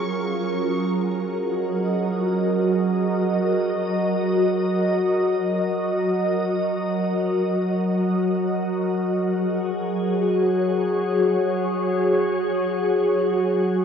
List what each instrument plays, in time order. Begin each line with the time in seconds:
Already playing: ambient pad F#3 C#4 F4 G#4 A#4, violin section C#6
1.05 ambient pad F#4
1.47 ambient pad D#5
9.28 ambient pad G#4
10.01 ambient pad C#5